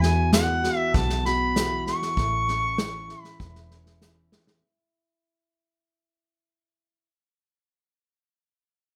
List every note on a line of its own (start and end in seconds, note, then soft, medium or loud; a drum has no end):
0.00 0.67 E2 medium
0.00 2.17 E2 medium
0.00 0.62 F#4 medium
0.00 0.33 G#5 medium
0.00 snare soft
0.33 1.57 E3 medium
0.33 0.77 F#5 medium
0.33 snare loud
0.33 hi-hat pedal medium
0.64 1.25 F#4 medium
0.64 snare soft
0.77 0.96 E5 medium
0.94 1.90 B1 medium
0.94 1.56 B2 medium
0.94 1.25 A5 medium
0.94 kick loud
0.94 snare soft
1.10 snare soft
1.25 2.14 F#4 medium
1.25 1.83 B5 loud
1.25 snare soft
1.56 2.79 E3 medium
1.56 snare loud
1.56 hi-hat pedal medium
1.86 3.23 C#6 loud
1.86 snare soft
2.02 snare soft
2.17 3.13 A1 medium
2.17 3.40 A2 medium
2.17 kick loud
2.17 snare soft
2.48 3.71 C#4 medium
2.48 snare soft
2.78 4.00 E3 medium
2.78 snare loud
2.78 hi-hat pedal medium
3.09 7.09 E4 medium
3.09 snare soft
3.23 3.97 B5 loud
3.23 snare soft
3.40 4.35 E1 medium
3.40 4.63 E2 medium
3.40 kick loud
3.40 snare soft
3.55 snare soft
3.71 4.60 C#4 medium
3.71 snare soft
3.86 snare soft
4.02 4.59 E3 medium
4.02 snare medium
4.02 hi-hat pedal medium
4.32 snare medium
4.47 snare medium